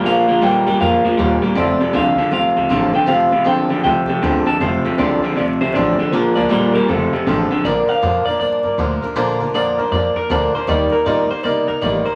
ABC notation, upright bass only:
X:1
M:4/4
L:1/8
Q:"Swing" 1/4=158
K:Bb
V:1 name="Upright bass" clef=bass
B,,, D,, F,, G,, F,, z E,, z | F,,, z C,, z E,, D,, A,,, z | F,,, A,,, C,, D,, C,, z D,, z | F,,, z C,, z E,, D,, A,,, z |
B,,, D,, F,, =E,,, F,,, z A,,, z | B,,, z F,, z G,, G,, D,, z | B,,, D,, F,, G,, F,, z D,, z | E,, z B,, z C, C, A,,, z |]